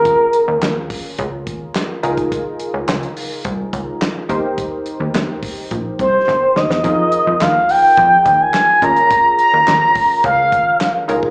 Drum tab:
HH |x-x-x-o-x-x-x-xx|x-x-xxo-x-x-x-x-|x-x-x-o-x-x-----|x-x-x-o-x-x-x-xx|
CP |----x-------x---|----x-------x---|----x-----------|----x-------x---|
SD |----o-------o---|----o-------o---|----o-------o-oo|----o-------o---|
BD |o-----o-o-o----o|o-------o-o---o-|o-----o-o-o-----|o-------o-o---o-|

HH |x-x-x-o-x-x-x-x-|
CP |----x-------x---|
SD |----o-------o---|
BD |o-----o-o-o----o|